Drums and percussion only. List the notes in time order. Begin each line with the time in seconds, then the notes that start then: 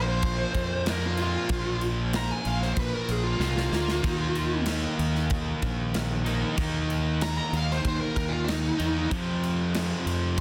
0.22 kick, crash
0.54 kick, crash
0.86 snare, crash
1.17 crash
1.49 kick, crash
1.81 crash
2.13 snare, crash
2.45 crash
2.62 snare
2.76 kick, crash
3.09 crash
3.40 snare
3.57 snare
3.73 snare
3.88 snare
4.04 kick, crash
4.35 crash
4.66 snare, crash
4.99 crash
5.15 snare
5.30 kick, crash
5.62 kick, crash
5.94 snare, crash
6.26 crash
6.58 kick, crash
6.90 crash
7.21 snare, crash
7.53 crash
7.71 snare
7.85 kick, crash
8.16 kick, crash
8.48 snare, crash
8.79 crash
9.11 kick, crash
9.43 crash
9.74 snare, crash
10.07 crash
10.38 kick